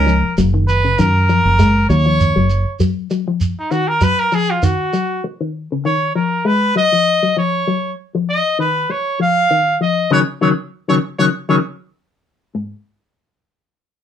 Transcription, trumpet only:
0.00 0.37 A#4 loud
0.68 1.01 B4 medium
0.99 1.89 A#4 medium
1.89 2.76 C#5 loud
3.59 3.73 D#4 medium
3.71 3.90 F#4 medium
3.88 4.05 A#4 medium
4.04 4.21 B4 loud
4.19 4.36 A#4 medium
4.35 4.52 G#4 loud
4.51 4.66 F4 medium
4.64 5.24 F#4 medium
5.86 6.13 C#5 medium
6.15 6.48 A#4 medium
6.46 6.76 B4 medium
6.77 7.33 D#5 loud
7.38 7.94 C#5 medium
8.30 8.57 D#5 medium
8.60 8.93 B4 medium
8.91 9.20 C#5 medium
9.22 9.77 F5 loud
9.82 10.10 D#5 medium
10.13 10.20 C#5 medium
10.42 10.49 C#5 medium
10.89 10.95 C#5 medium
11.19 11.26 C#5 medium
11.49 11.56 C#5 medium

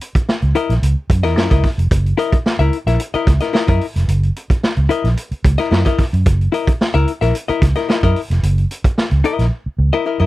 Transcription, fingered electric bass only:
0.15 muted fingered electric bass stroke medium
0.42 0.52 C#2 medium
0.69 0.79 A#1 medium
0.82 0.93 C#2 medium
1.10 1.23 F#2 medium
1.23 1.36 E2 medium
1.36 1.47 F#2 medium
1.51 1.61 C#2 medium
1.78 1.88 F1 medium
1.91 2.12 F#1 loud
2.33 muted fingered electric bass stroke soft
2.59 2.69 C#2 medium
2.86 2.96 A#1 medium
3.14 muted fingered electric bass stroke soft
3.27 3.38 C#2 medium
3.68 3.78 F#2 medium
3.96 4.05 F1 loud
4.08 4.29 F#1 loud
4.50 muted fingered electric bass stroke medium
4.77 4.87 C#2 medium
5.04 5.14 A#1 medium
5.31 muted fingered electric bass stroke soft
5.45 5.55 C#2 medium
5.71 5.82 F#2 loud
5.99 muted fingered electric bass stroke soft
6.13 6.23 F#2 medium
6.26 6.47 F#1 loud
6.67 muted fingered electric bass stroke soft
6.94 7.04 C#2 medium
7.22 7.31 A#1 medium
7.49 muted fingered electric bass stroke soft
7.62 7.73 C#2 medium
8.03 8.13 F#2 medium
8.30 8.40 F1 medium
8.43 8.63 F#1 loud
8.84 muted fingered electric bass stroke soft
9.11 9.21 C#2 loud
9.39 9.48 A#1 medium
9.66 muted fingered electric bass stroke soft
9.78 9.89 C#2 medium
10.20 10.26 F#2 medium

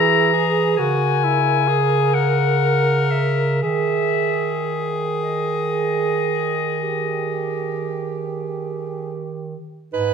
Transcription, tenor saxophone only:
0.00 0.33 E4 medium
0.33 0.80 G#4 medium
0.79 1.26 F#4 medium
1.24 1.69 E4 medium
1.68 2.15 G#4 medium
2.14 3.62 A#4 medium
3.62 9.11 G#4 medium
9.93 10.14 D#4 medium

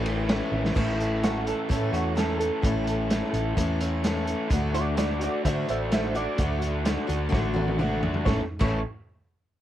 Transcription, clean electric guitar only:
1.24 1.46 F#4 loud
1.48 1.92 A4 medium
1.94 2.16 F#4 medium
2.17 2.38 A4 medium
2.39 3.76 A4 loud
4.74 4.97 F#4 medium
4.74 4.96 D5 medium
4.98 5.19 F#4 medium
4.98 5.20 D5 medium
5.22 5.43 F#4 medium
5.22 5.45 D5 medium
5.45 5.66 C5 medium
5.45 5.67 E5 medium
5.69 5.90 C5 medium
5.69 5.91 E5 loud
5.93 6.14 C5 medium
5.93 6.14 E5 medium
6.16 7.51 D5 loud
8.25 8.38 C#5 medium
8.61 8.82 C#5 medium

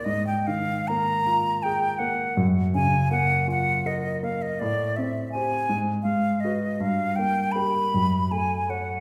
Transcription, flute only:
0.04 0.26 D#5 medium
0.27 0.48 G5 medium
0.47 0.89 F5 medium
0.88 1.64 A#5 medium
1.63 2.00 G5 medium
1.99 2.47 F#5 medium
2.75 3.11 G#5 medium
3.12 3.47 F#5 medium
3.51 3.88 F#5 medium
3.86 4.25 D#5 medium
4.24 4.43 F5 medium
4.42 4.61 D#5 medium
4.59 4.98 D5 medium
4.96 5.31 E5 medium
5.32 5.79 G#5 medium
6.03 6.42 F5 medium
6.40 6.82 D#5 medium
6.80 7.17 F5 medium
7.16 7.53 G5 medium
7.52 8.33 B5 medium
8.31 8.71 G#5 medium
8.70 9.00 F#5 medium

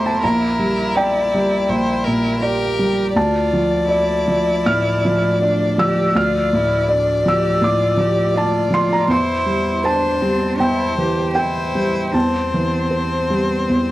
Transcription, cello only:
0.00 2.44 E4 medium
2.42 3.18 G4 medium
3.16 3.89 F4 medium
3.90 5.38 E4 medium
5.42 5.80 D4 medium
5.79 6.18 G4 medium
6.17 6.56 F4 medium
6.54 6.93 E4 medium
6.91 7.25 D4 medium
7.26 7.64 G4 medium
7.62 8.00 F4 medium
7.99 8.37 G4 medium
8.36 9.11 F4 medium
9.10 9.87 E4 medium
9.86 10.24 D4 medium
10.22 10.61 C4 medium
10.60 10.98 E4 medium
10.99 11.40 G4 medium
11.38 12.16 E4 medium
12.15 13.91 C4 medium

